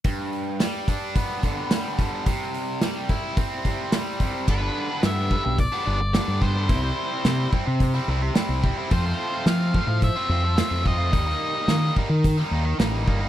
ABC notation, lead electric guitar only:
X:1
M:4/4
L:1/8
Q:1/4=108
K:Gmix
V:1 name="Lead electric guitar"
z8 | z8 | B2 e2 d3 c- | c3 z4 z |
c2 f2 e3 _e- | _e3 z4 z |]